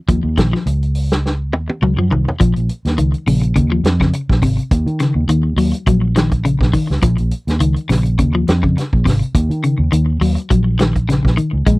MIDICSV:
0, 0, Header, 1, 6, 480
1, 0, Start_track
1, 0, Tempo, 579151
1, 66, Time_signature, 4, 2, 24, 8
1, 9773, End_track
2, 0, Start_track
2, 0, Title_t, "Clean electric guitar"
2, 0, Program_c, 0, 27
2, 74, Note_on_c, 0, 53, 76
2, 231, Note_off_c, 0, 53, 0
2, 311, Note_on_c, 0, 51, 74
2, 397, Note_off_c, 0, 51, 0
2, 442, Note_on_c, 0, 53, 68
2, 600, Note_off_c, 0, 53, 0
2, 1513, Note_on_c, 0, 54, 72
2, 1598, Note_off_c, 0, 54, 0
2, 1646, Note_on_c, 0, 53, 69
2, 1715, Note_off_c, 0, 53, 0
2, 1751, Note_on_c, 0, 51, 72
2, 1908, Note_off_c, 0, 51, 0
2, 1988, Note_on_c, 0, 53, 87
2, 2147, Note_off_c, 0, 53, 0
2, 2470, Note_on_c, 0, 51, 73
2, 2628, Note_off_c, 0, 51, 0
2, 2714, Note_on_c, 0, 49, 81
2, 2871, Note_off_c, 0, 49, 0
2, 2948, Note_on_c, 0, 49, 78
2, 3034, Note_off_c, 0, 49, 0
2, 3081, Note_on_c, 0, 53, 75
2, 3239, Note_off_c, 0, 53, 0
2, 3324, Note_on_c, 0, 49, 69
2, 3480, Note_off_c, 0, 49, 0
2, 3671, Note_on_c, 0, 48, 76
2, 3828, Note_off_c, 0, 48, 0
2, 4146, Note_on_c, 0, 49, 83
2, 4305, Note_off_c, 0, 49, 0
2, 4386, Note_on_c, 0, 51, 80
2, 4545, Note_off_c, 0, 51, 0
2, 4624, Note_on_c, 0, 54, 72
2, 4784, Note_off_c, 0, 54, 0
2, 4869, Note_on_c, 0, 54, 90
2, 5027, Note_off_c, 0, 54, 0
2, 5104, Note_on_c, 0, 51, 78
2, 5264, Note_off_c, 0, 51, 0
2, 5345, Note_on_c, 0, 49, 82
2, 5504, Note_off_c, 0, 49, 0
2, 5581, Note_on_c, 0, 51, 79
2, 5742, Note_off_c, 0, 51, 0
2, 5825, Note_on_c, 0, 53, 84
2, 5984, Note_off_c, 0, 53, 0
2, 6304, Note_on_c, 0, 51, 82
2, 6463, Note_off_c, 0, 51, 0
2, 6542, Note_on_c, 0, 49, 73
2, 6702, Note_off_c, 0, 49, 0
2, 6787, Note_on_c, 0, 49, 78
2, 6874, Note_off_c, 0, 49, 0
2, 6919, Note_on_c, 0, 53, 78
2, 7078, Note_off_c, 0, 53, 0
2, 7153, Note_on_c, 0, 49, 73
2, 7313, Note_off_c, 0, 49, 0
2, 7504, Note_on_c, 0, 48, 81
2, 7664, Note_off_c, 0, 48, 0
2, 7987, Note_on_c, 0, 49, 82
2, 8146, Note_off_c, 0, 49, 0
2, 8222, Note_on_c, 0, 51, 75
2, 8382, Note_off_c, 0, 51, 0
2, 8465, Note_on_c, 0, 54, 77
2, 8624, Note_off_c, 0, 54, 0
2, 8705, Note_on_c, 0, 54, 78
2, 8865, Note_off_c, 0, 54, 0
2, 8945, Note_on_c, 0, 51, 74
2, 9104, Note_off_c, 0, 51, 0
2, 9190, Note_on_c, 0, 49, 82
2, 9348, Note_off_c, 0, 49, 0
2, 9426, Note_on_c, 0, 51, 76
2, 9585, Note_off_c, 0, 51, 0
2, 9668, Note_on_c, 0, 56, 77
2, 9773, Note_off_c, 0, 56, 0
2, 9773, End_track
3, 0, Start_track
3, 0, Title_t, "Fingered electric bass"
3, 0, Program_c, 1, 33
3, 71, Note_on_c, 1, 39, 99
3, 189, Note_off_c, 1, 39, 0
3, 195, Note_on_c, 1, 39, 84
3, 296, Note_off_c, 1, 39, 0
3, 315, Note_on_c, 1, 34, 86
3, 431, Note_off_c, 1, 34, 0
3, 546, Note_on_c, 1, 37, 86
3, 1264, Note_off_c, 1, 37, 0
3, 1264, Note_on_c, 1, 39, 78
3, 1385, Note_off_c, 1, 39, 0
3, 1508, Note_on_c, 1, 37, 82
3, 1627, Note_off_c, 1, 37, 0
3, 1637, Note_on_c, 1, 42, 86
3, 1736, Note_off_c, 1, 42, 0
3, 1756, Note_on_c, 1, 36, 72
3, 1872, Note_off_c, 1, 36, 0
3, 1996, Note_on_c, 1, 34, 111
3, 2111, Note_off_c, 1, 34, 0
3, 2129, Note_on_c, 1, 34, 75
3, 2223, Note_off_c, 1, 34, 0
3, 2362, Note_on_c, 1, 39, 80
3, 2459, Note_off_c, 1, 39, 0
3, 2473, Note_on_c, 1, 37, 91
3, 2590, Note_off_c, 1, 37, 0
3, 2708, Note_on_c, 1, 34, 100
3, 2926, Note_off_c, 1, 34, 0
3, 2947, Note_on_c, 1, 39, 101
3, 3165, Note_off_c, 1, 39, 0
3, 3180, Note_on_c, 1, 41, 99
3, 3402, Note_off_c, 1, 41, 0
3, 3560, Note_on_c, 1, 34, 97
3, 3658, Note_off_c, 1, 34, 0
3, 3669, Note_on_c, 1, 32, 88
3, 3787, Note_off_c, 1, 32, 0
3, 3906, Note_on_c, 1, 39, 118
3, 4025, Note_off_c, 1, 39, 0
3, 4030, Note_on_c, 1, 51, 89
3, 4252, Note_off_c, 1, 51, 0
3, 4270, Note_on_c, 1, 39, 86
3, 4367, Note_off_c, 1, 39, 0
3, 4372, Note_on_c, 1, 39, 90
3, 4597, Note_off_c, 1, 39, 0
3, 4612, Note_on_c, 1, 39, 98
3, 4738, Note_off_c, 1, 39, 0
3, 4862, Note_on_c, 1, 34, 91
3, 5442, Note_off_c, 1, 34, 0
3, 5473, Note_on_c, 1, 34, 96
3, 5574, Note_off_c, 1, 34, 0
3, 5720, Note_on_c, 1, 37, 73
3, 5814, Note_off_c, 1, 37, 0
3, 5819, Note_on_c, 1, 34, 119
3, 5942, Note_off_c, 1, 34, 0
3, 5961, Note_on_c, 1, 34, 82
3, 6058, Note_off_c, 1, 34, 0
3, 6194, Note_on_c, 1, 39, 82
3, 6294, Note_off_c, 1, 39, 0
3, 6298, Note_on_c, 1, 37, 97
3, 6421, Note_off_c, 1, 37, 0
3, 6541, Note_on_c, 1, 34, 96
3, 6762, Note_off_c, 1, 34, 0
3, 6783, Note_on_c, 1, 39, 91
3, 7004, Note_off_c, 1, 39, 0
3, 7032, Note_on_c, 1, 41, 91
3, 7248, Note_off_c, 1, 41, 0
3, 7403, Note_on_c, 1, 34, 93
3, 7499, Note_off_c, 1, 34, 0
3, 7511, Note_on_c, 1, 32, 89
3, 7629, Note_off_c, 1, 32, 0
3, 7747, Note_on_c, 1, 39, 114
3, 7866, Note_off_c, 1, 39, 0
3, 7870, Note_on_c, 1, 51, 85
3, 8093, Note_off_c, 1, 51, 0
3, 8111, Note_on_c, 1, 39, 99
3, 8213, Note_off_c, 1, 39, 0
3, 8224, Note_on_c, 1, 39, 96
3, 8444, Note_off_c, 1, 39, 0
3, 8461, Note_on_c, 1, 39, 96
3, 8583, Note_off_c, 1, 39, 0
3, 8708, Note_on_c, 1, 34, 88
3, 9285, Note_off_c, 1, 34, 0
3, 9320, Note_on_c, 1, 34, 82
3, 9418, Note_off_c, 1, 34, 0
3, 9556, Note_on_c, 1, 37, 77
3, 9656, Note_off_c, 1, 37, 0
3, 9668, Note_on_c, 1, 34, 113
3, 9773, Note_off_c, 1, 34, 0
3, 9773, End_track
4, 0, Start_track
4, 0, Title_t, "Muted clean electric guitar strokes"
4, 1275, Note_on_c, 9, 29, 68
4, 1358, Note_off_c, 9, 29, 0
4, 9773, End_track
5, 0, Start_track
5, 0, Title_t, "Muted fingered electric bass strokes"
5, 5584, Note_on_c, 9, 29, 32
5, 5667, Note_off_c, 9, 29, 0
5, 9423, Note_on_c, 9, 29, 36
5, 9506, Note_off_c, 9, 29, 0
5, 9773, End_track
6, 0, Start_track
6, 0, Title_t, "Drums"
6, 69, Note_on_c, 9, 42, 58
6, 70, Note_on_c, 9, 36, 89
6, 152, Note_off_c, 9, 42, 0
6, 153, Note_off_c, 9, 36, 0
6, 311, Note_on_c, 9, 36, 57
6, 311, Note_on_c, 9, 42, 51
6, 321, Note_on_c, 9, 38, 69
6, 394, Note_off_c, 9, 36, 0
6, 394, Note_off_c, 9, 42, 0
6, 404, Note_off_c, 9, 38, 0
6, 455, Note_on_c, 9, 38, 27
6, 537, Note_off_c, 9, 38, 0
6, 551, Note_on_c, 9, 42, 64
6, 634, Note_off_c, 9, 42, 0
6, 685, Note_on_c, 9, 42, 30
6, 768, Note_off_c, 9, 42, 0
6, 786, Note_on_c, 9, 46, 65
6, 868, Note_off_c, 9, 46, 0
6, 917, Note_on_c, 9, 42, 28
6, 927, Note_on_c, 9, 38, 60
6, 1000, Note_off_c, 9, 42, 0
6, 1010, Note_off_c, 9, 38, 0
6, 1042, Note_on_c, 9, 38, 40
6, 1124, Note_off_c, 9, 38, 0
6, 1269, Note_on_c, 9, 48, 56
6, 1352, Note_off_c, 9, 48, 0
6, 1404, Note_on_c, 9, 48, 50
6, 1487, Note_off_c, 9, 48, 0
6, 1516, Note_on_c, 9, 47, 63
6, 1599, Note_off_c, 9, 47, 0
6, 1758, Note_on_c, 9, 43, 61
6, 1841, Note_off_c, 9, 43, 0
6, 1892, Note_on_c, 9, 43, 66
6, 1975, Note_off_c, 9, 43, 0
6, 1993, Note_on_c, 9, 42, 70
6, 1994, Note_on_c, 9, 36, 83
6, 2076, Note_off_c, 9, 42, 0
6, 2077, Note_off_c, 9, 36, 0
6, 2123, Note_on_c, 9, 42, 34
6, 2206, Note_off_c, 9, 42, 0
6, 2231, Note_on_c, 9, 42, 57
6, 2314, Note_off_c, 9, 42, 0
6, 2364, Note_on_c, 9, 42, 35
6, 2374, Note_on_c, 9, 38, 31
6, 2447, Note_off_c, 9, 42, 0
6, 2457, Note_off_c, 9, 38, 0
6, 2469, Note_on_c, 9, 42, 64
6, 2552, Note_off_c, 9, 42, 0
6, 2602, Note_on_c, 9, 42, 30
6, 2685, Note_off_c, 9, 42, 0
6, 2712, Note_on_c, 9, 46, 65
6, 2795, Note_off_c, 9, 46, 0
6, 2844, Note_on_c, 9, 42, 32
6, 2927, Note_off_c, 9, 42, 0
6, 2949, Note_on_c, 9, 42, 63
6, 2950, Note_on_c, 9, 36, 65
6, 3032, Note_off_c, 9, 42, 0
6, 3033, Note_off_c, 9, 36, 0
6, 3187, Note_on_c, 9, 42, 46
6, 3197, Note_on_c, 9, 38, 75
6, 3270, Note_off_c, 9, 42, 0
6, 3279, Note_off_c, 9, 38, 0
6, 3318, Note_on_c, 9, 36, 64
6, 3323, Note_on_c, 9, 38, 28
6, 3401, Note_off_c, 9, 36, 0
6, 3406, Note_off_c, 9, 38, 0
6, 3426, Note_on_c, 9, 42, 63
6, 3509, Note_off_c, 9, 42, 0
6, 3559, Note_on_c, 9, 36, 67
6, 3573, Note_on_c, 9, 38, 28
6, 3642, Note_off_c, 9, 36, 0
6, 3656, Note_off_c, 9, 38, 0
6, 3664, Note_on_c, 9, 46, 59
6, 3666, Note_on_c, 9, 36, 68
6, 3746, Note_off_c, 9, 46, 0
6, 3749, Note_off_c, 9, 36, 0
6, 3803, Note_on_c, 9, 42, 34
6, 3886, Note_off_c, 9, 42, 0
6, 3904, Note_on_c, 9, 42, 66
6, 3905, Note_on_c, 9, 36, 90
6, 3987, Note_off_c, 9, 42, 0
6, 3988, Note_off_c, 9, 36, 0
6, 4039, Note_on_c, 9, 42, 32
6, 4122, Note_off_c, 9, 42, 0
6, 4140, Note_on_c, 9, 42, 54
6, 4150, Note_on_c, 9, 38, 27
6, 4223, Note_off_c, 9, 42, 0
6, 4233, Note_off_c, 9, 38, 0
6, 4382, Note_on_c, 9, 42, 76
6, 4465, Note_off_c, 9, 42, 0
6, 4624, Note_on_c, 9, 46, 68
6, 4707, Note_off_c, 9, 46, 0
6, 4756, Note_on_c, 9, 42, 34
6, 4839, Note_off_c, 9, 42, 0
6, 4863, Note_on_c, 9, 36, 69
6, 4864, Note_on_c, 9, 42, 66
6, 4946, Note_off_c, 9, 36, 0
6, 4946, Note_off_c, 9, 42, 0
6, 5104, Note_on_c, 9, 42, 52
6, 5114, Note_on_c, 9, 38, 68
6, 5187, Note_off_c, 9, 42, 0
6, 5197, Note_off_c, 9, 38, 0
6, 5235, Note_on_c, 9, 36, 68
6, 5236, Note_on_c, 9, 42, 36
6, 5318, Note_off_c, 9, 36, 0
6, 5318, Note_off_c, 9, 42, 0
6, 5347, Note_on_c, 9, 42, 72
6, 5430, Note_off_c, 9, 42, 0
6, 5475, Note_on_c, 9, 36, 68
6, 5486, Note_on_c, 9, 38, 28
6, 5558, Note_off_c, 9, 36, 0
6, 5569, Note_off_c, 9, 38, 0
6, 5580, Note_on_c, 9, 46, 58
6, 5582, Note_on_c, 9, 36, 64
6, 5663, Note_off_c, 9, 46, 0
6, 5665, Note_off_c, 9, 36, 0
6, 5728, Note_on_c, 9, 38, 31
6, 5811, Note_off_c, 9, 38, 0
6, 5821, Note_on_c, 9, 42, 72
6, 5823, Note_on_c, 9, 36, 94
6, 5904, Note_off_c, 9, 42, 0
6, 5906, Note_off_c, 9, 36, 0
6, 5951, Note_on_c, 9, 42, 35
6, 6034, Note_off_c, 9, 42, 0
6, 6061, Note_on_c, 9, 42, 58
6, 6143, Note_off_c, 9, 42, 0
6, 6197, Note_on_c, 9, 42, 36
6, 6207, Note_on_c, 9, 38, 29
6, 6280, Note_off_c, 9, 42, 0
6, 6290, Note_off_c, 9, 38, 0
6, 6299, Note_on_c, 9, 42, 70
6, 6382, Note_off_c, 9, 42, 0
6, 6433, Note_on_c, 9, 42, 33
6, 6516, Note_off_c, 9, 42, 0
6, 6545, Note_on_c, 9, 46, 61
6, 6554, Note_on_c, 9, 38, 30
6, 6627, Note_off_c, 9, 46, 0
6, 6637, Note_off_c, 9, 38, 0
6, 6675, Note_on_c, 9, 42, 32
6, 6758, Note_off_c, 9, 42, 0
6, 6785, Note_on_c, 9, 36, 69
6, 6785, Note_on_c, 9, 42, 61
6, 6867, Note_off_c, 9, 42, 0
6, 6868, Note_off_c, 9, 36, 0
6, 7026, Note_on_c, 9, 42, 56
6, 7036, Note_on_c, 9, 38, 74
6, 7109, Note_off_c, 9, 42, 0
6, 7119, Note_off_c, 9, 38, 0
6, 7158, Note_on_c, 9, 36, 73
6, 7240, Note_off_c, 9, 36, 0
6, 7275, Note_on_c, 9, 42, 69
6, 7285, Note_on_c, 9, 38, 28
6, 7358, Note_off_c, 9, 42, 0
6, 7368, Note_off_c, 9, 38, 0
6, 7400, Note_on_c, 9, 36, 64
6, 7483, Note_off_c, 9, 36, 0
6, 7508, Note_on_c, 9, 36, 70
6, 7515, Note_on_c, 9, 46, 59
6, 7525, Note_on_c, 9, 38, 30
6, 7591, Note_off_c, 9, 36, 0
6, 7598, Note_off_c, 9, 46, 0
6, 7608, Note_off_c, 9, 38, 0
6, 7642, Note_on_c, 9, 42, 35
6, 7725, Note_off_c, 9, 42, 0
6, 7747, Note_on_c, 9, 36, 96
6, 7748, Note_on_c, 9, 42, 70
6, 7830, Note_off_c, 9, 36, 0
6, 7831, Note_off_c, 9, 42, 0
6, 7882, Note_on_c, 9, 42, 33
6, 7965, Note_off_c, 9, 42, 0
6, 7989, Note_on_c, 9, 42, 50
6, 8072, Note_off_c, 9, 42, 0
6, 8227, Note_on_c, 9, 42, 70
6, 8310, Note_off_c, 9, 42, 0
6, 8466, Note_on_c, 9, 46, 70
6, 8549, Note_off_c, 9, 46, 0
6, 8604, Note_on_c, 9, 42, 32
6, 8687, Note_off_c, 9, 42, 0
6, 8708, Note_on_c, 9, 36, 73
6, 8708, Note_on_c, 9, 42, 67
6, 8791, Note_off_c, 9, 36, 0
6, 8791, Note_off_c, 9, 42, 0
6, 8946, Note_on_c, 9, 42, 52
6, 8956, Note_on_c, 9, 38, 80
6, 9029, Note_off_c, 9, 42, 0
6, 9039, Note_off_c, 9, 38, 0
6, 9080, Note_on_c, 9, 36, 65
6, 9081, Note_on_c, 9, 42, 33
6, 9163, Note_off_c, 9, 36, 0
6, 9164, Note_off_c, 9, 42, 0
6, 9197, Note_on_c, 9, 42, 65
6, 9207, Note_on_c, 9, 38, 28
6, 9280, Note_off_c, 9, 42, 0
6, 9290, Note_off_c, 9, 38, 0
6, 9321, Note_on_c, 9, 36, 65
6, 9337, Note_on_c, 9, 38, 27
6, 9404, Note_off_c, 9, 36, 0
6, 9420, Note_off_c, 9, 38, 0
6, 9431, Note_on_c, 9, 42, 54
6, 9514, Note_off_c, 9, 42, 0
6, 9668, Note_on_c, 9, 36, 87
6, 9668, Note_on_c, 9, 42, 72
6, 9751, Note_off_c, 9, 36, 0
6, 9751, Note_off_c, 9, 42, 0
6, 9773, End_track
0, 0, End_of_file